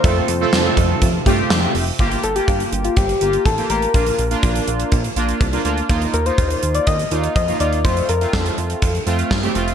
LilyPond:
<<
  \new Staff \with { instrumentName = "Soft synth lead" } { \time 4/4 \key g \minor \tempo 4 = 123 c''4. r2 r8 | r8 a'16 g'4 f'16 g'4 a'8 bes'8~ | bes'4. r2 r8 | r8 bes'16 c''4 d''16 ees''4 ees''8 d''8 |
c''8 bes'8 a'4. r4. | }
  \new Staff \with { instrumentName = "Analog polysynth" } { \time 4/4 \key g \minor <a c' f' a'>8 r16 <a c' f' a'>4~ <a c' f' a'>16 r8 <a c' f' g'>4~ <a c' f' g'>16 r16 | <bes f' g'>8 r16 <bes f' g'>4~ <bes f' g'>16 r8 <bes f' g'>8 r16 <bes f' g'>16 <bes f' g'>8 | <bes d' f'>8 r16 <bes d' f'>4~ <bes d' f'>16 r8 <bes d' f'>8 r16 <bes d' f'>16 <bes d' f'>8 | <bes ees' f'>8 r16 <bes ees' f'>4~ <bes ees' f'>16 r8 <bes ees' f'>8 r16 <bes ees' f'>16 <bes ees' f'>8 |
<a c' f'>8 r16 <a c' f'>4~ <a c' f'>16 r8 <a c' f'>8 r16 <a c' g'>16 <a c' f'>8 | }
  \new Staff \with { instrumentName = "Analog synth pad" } { \time 4/4 \key g \minor <c a f'>1 | r1 | r1 | r1 |
r1 | }
  \new Staff \with { instrumentName = "Analog synth bass" } { \clef bass \time 4/4 \key g \minor f,8 f,8 f,8 f,8 f,8 g,8 f,8 f,,8 | g,,8 g,,8 g,,8 g,,8 g,,8 g,,8 a,,8 a,,8 | bes,,8 bes,,8 bes,,8 bes,,8 bes,,8 bes,,8 c,8 d,8 | ees,8 ees,8 ees,8 ees,8 ees,8 ees,8 f,8 ees,8 |
f,8 f,8 f,8 f,8 f,8 f,8 g,8 f,,8 | }
  \new DrumStaff \with { instrumentName = "Drums" } \drummode { \time 4/4 <hh bd>8 hh8 <hh sn>8 <hh bd>8 <hh bd>8 <hh bd>8 <hh sn>8 hho8 | <hh bd>16 hh16 hh16 hh16 <hh bd>16 hh16 hh16 hh16 <hh bd>16 hh16 hh16 hh16 <hh bd>16 hh16 hh16 hh16 | <hh bd>16 hh16 hh16 hh16 <hh bd>16 hh16 hh16 hh16 <hh bd>16 hh16 hh16 hh16 <hh bd>16 hh16 hh16 hh16 | <hh bd>16 hh16 hh16 hh16 <hh bd>16 hh16 hh16 hh16 <hh bd>16 hh16 hh16 hh16 <hh bd>16 hh16 hh16 hh16 |
<hh bd>16 hh16 hh16 hh16 <bd sn>16 hh16 hh16 hh16 <hh bd>16 hh16 hh16 hh16 <bd sn>16 hh16 hh16 hh16 | }
>>